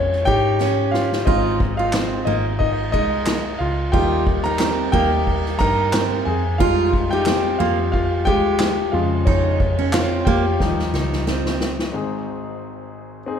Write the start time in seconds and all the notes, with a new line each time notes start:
Already playing: F2 G#3 C#4 F4 C#5 F5
0.12 snare, ride
0.25 G#2 D#4 G4 G5, kick, ride
0.46 ride
0.60 C#4, snare
0.91 F4 F5, snare
1.12 snare
1.25 G#1 G#3 C4 D#4 F4 D#5, kick, crash
1.60 kick, ride
1.77 D#4 F4 F5, ride
1.93 C4, snare, clap, ride
2.12 ride
2.25 G#1 A#3 D#4 D#5, ride
2.46 ride
2.59 D#4 D#5, kick, ride
2.92 C2 G#3 D#4 D#5, kick, ride
3.12 ride
3.26 snare, clap, ride
3.46 ride
3.58 C#2 F4 F5, ride
3.78 ride
3.92 D#2 G3 A#3 D#4 F4 G4 G5, kick, ride
4.11 ride
4.26 kick, ride
4.44 D#4 A#4 A#5, ride
4.59 C4, snare, clap, ride
4.78 ride
4.92 D#2 G3 A#3 D#4 G4 G5, kick, ride
5.12 ride
5.27 kick, ride
5.46 snare
5.59 G2 D#4 A#4 A#5, kick, ride
5.79 ride
5.93 C4, snare, clap, ride
6.25 F2 G#4 G#5, ride
6.46 ride
6.58 G3 G#3 D#4 F4 F5, kick, ride
6.78 ride
6.93 kick, ride
7.11 D#4 G4 G5, ride
7.26 C4, snare, clap, ride
7.58 F2 A#3 F4 F5, ride
7.79 ride
7.92 F4 F5, kick, ride
8.25 D#2 G#3 G4 G5, kick, ride
8.45 ride
8.59 snare, clap, ride
8.92 F2 C#3 F3 G#3 F4 F5, ride
9.12 ride
9.25 F2 C#4 D#4 C#5, kick, ride
9.60 kick, ride
9.79 C#4, ride
9.92 C4 F4 F5, snare, clap, ride
10.25 F2 A#3 G4 G5, kick, ride
10.46 ride
10.59 D#2 F3 G3 D#4, kick, snare
10.79 snare
10.94 C#2 D#4, snare
11.13 snare
11.27 C4, snare
11.46 snare
11.60 snare
11.79 snare
11.93 G#1 G#2 C4 D#4 G#4
13.26 C4 D#4 G#4